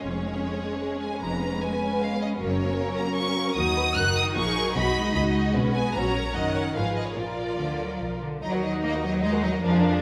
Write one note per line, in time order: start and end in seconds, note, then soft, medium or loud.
0.00 0.35 F1 soft
0.00 0.36 F2 soft
0.00 0.11 G#3 soft
0.00 2.39 G#3 soft
0.00 1.17 C#4 soft
0.00 1.19 G#4 soft
0.00 1.02 C#5 medium
0.12 0.22 C#4 soft
0.23 0.32 G#3 soft
0.33 0.43 C#4 soft
0.43 0.53 G#3 soft
0.53 0.62 C#4 soft
0.62 0.72 G#3 soft
0.73 0.82 C#4 soft
0.82 0.92 G#3 soft
0.93 1.02 C#4 soft
1.02 1.12 G#3 soft
1.02 1.22 G#5 medium
1.13 1.22 C#4 soft
1.21 1.54 F1 medium
1.21 1.54 F2 soft
1.21 1.31 G#3 soft
1.21 3.53 C#4 soft
1.21 2.40 B4 soft
1.21 1.61 A#5 medium
1.33 1.42 B3 soft
1.42 1.51 C#4 soft
1.53 1.62 B3 soft
1.61 1.71 G#3 soft
1.61 2.00 G#5 medium
1.72 1.81 B3 soft
1.82 1.91 C#4 soft
1.93 2.01 B3 soft
2.01 2.11 G#3 soft
2.01 2.20 F5 medium
2.12 2.21 B3 soft
2.21 2.30 C#4 soft
2.21 2.29 D#5 medium
2.32 2.41 B3 soft
2.39 2.72 F#1 medium
2.39 2.72 F#2 medium
2.39 3.55 F#3 soft
2.39 2.49 A#3 medium
2.39 3.55 A#4 medium
2.39 2.97 C#5 medium
2.51 2.59 C#4 soft
2.61 2.70 A#3 medium
2.71 2.80 C#4 soft
2.79 2.89 A#3 medium
2.89 2.99 C#4 soft
2.97 3.08 A#3 soft
2.97 3.17 A#5 medium
3.07 3.17 C#4 soft
3.16 3.27 A#3 medium
3.16 3.56 C#6 medium
3.27 3.37 C#4 soft
3.36 3.47 A#3 medium
3.46 3.56 C#4 soft
3.56 3.94 D#2 medium
3.56 3.94 F#3 medium
3.56 3.94 D#4 medium
3.56 4.32 F#4 medium
3.56 3.64 A#4 medium
3.56 3.96 D#6 medium
3.76 3.84 B4 medium
3.95 4.33 F#1 medium
3.95 4.33 F#2 medium
3.95 4.36 D#3 medium
3.95 4.74 D#4 medium
3.95 4.35 A#4 medium
3.95 4.17 F#6 medium
4.16 4.24 D#6 medium
4.36 4.73 A#1 medium
4.36 4.74 A#2 medium
4.36 4.56 F3 medium
4.36 4.75 G#4 medium
4.36 4.75 A#4 medium
4.36 4.75 C#6 medium
4.56 4.75 F#3 medium
4.75 5.13 B1 medium
4.75 5.13 B2 medium
4.75 4.84 F#3 medium
4.75 5.53 D#4 medium
4.75 5.14 F#4 medium
4.75 5.55 D#5 medium
4.75 5.13 B5 medium
4.96 5.93 G#3 medium
5.15 5.52 C#2 medium
5.15 5.53 C#3 medium
5.15 5.93 F#4 medium
5.15 5.23 B5 medium
5.54 5.92 B1 medium
5.54 5.93 B2 medium
5.54 5.75 C#4 medium
5.54 5.95 B4 medium
5.74 5.95 B3 medium
5.74 5.93 G#5 medium
5.94 6.32 A#1 medium
5.94 6.33 A#2 medium
5.94 6.36 F#3 soft
5.94 6.35 C#4 soft
5.94 6.15 F#4 medium
5.94 6.36 C#5 medium
5.94 6.34 A#5 medium
6.14 6.33 A#4 medium
6.34 6.72 F#1 medium
6.34 6.73 F#2 medium
6.34 6.75 D#3 soft
6.34 6.75 C#4 soft
6.34 6.74 A#4 soft
6.34 6.55 D#5 medium
6.34 6.75 F#5 medium
6.55 6.63 C#5 soft
6.75 7.13 G#1 soft
6.75 7.14 G#2 soft
6.75 7.16 F3 soft
6.75 7.16 F4 soft
6.75 7.17 G#4 soft
6.75 7.16 B4 soft
6.75 6.96 F5 medium
6.96 7.06 D#5 medium
7.06 7.16 C#5 soft
7.16 7.55 A#1 soft
7.16 7.56 A#2 soft
7.16 8.20 F3 soft
7.16 8.20 F4 soft
7.16 8.22 F4 soft
7.16 8.20 A#4 soft
7.16 8.21 D5 medium
7.57 7.97 D2 soft
7.57 7.78 D3 soft
7.80 8.01 F#3 soft
7.99 8.39 B1 soft
7.99 8.21 F3 soft
8.21 8.41 D3 soft
8.41 9.58 D#2 medium
8.41 8.80 F#3 medium
8.41 9.58 D#4 medium
8.41 8.51 D#4 soft
8.41 8.52 D#5 soft
8.41 8.51 A#5 soft
8.52 8.62 F#4 soft
8.52 8.62 A#4 soft
8.52 8.62 F#5 soft
8.62 8.73 D#4 soft
8.62 8.73 D#5 soft
8.62 8.73 A#5 soft
8.72 8.83 F#4 soft
8.72 8.83 A#4 soft
8.72 8.82 F#5 soft
8.82 8.91 A#3 medium
8.82 8.92 D#4 soft
8.82 8.92 D#5 soft
8.82 8.93 A#5 soft
8.92 9.03 F#4 soft
8.92 9.03 A#4 soft
8.92 9.03 F#5 soft
9.04 9.23 F#3 medium
9.04 9.13 D#4 soft
9.04 9.13 D#5 soft
9.04 9.13 A#5 soft
9.13 9.23 F#4 soft
9.13 9.23 A#4 soft
9.13 9.23 F#5 soft
9.22 9.43 G#3 medium
9.22 9.32 D#4 medium
9.22 9.32 D#5 soft
9.22 9.32 A#5 soft
9.32 9.43 F#4 soft
9.32 9.42 A#4 soft
9.32 9.42 F#5 soft
9.43 9.62 F#3 medium
9.43 9.53 D#4 medium
9.43 9.53 D#5 medium
9.43 9.53 A#5 medium
9.51 9.62 F#4 soft
9.51 9.61 A#4 soft
9.51 9.63 F#5 soft
9.62 10.02 F2 medium
9.62 10.01 F3 medium
9.62 9.71 D4 medium
9.62 10.01 D4 medium
9.62 9.72 A#4 medium
9.62 9.72 F5 medium
9.71 9.81 F4 medium
9.71 9.82 G#4 medium
9.71 9.83 D5 soft
9.81 9.91 D4 medium
9.81 9.91 A#4 medium
9.81 9.91 F5 medium
9.91 10.01 F4 medium
9.91 10.01 G#4 soft
9.91 10.01 D5 medium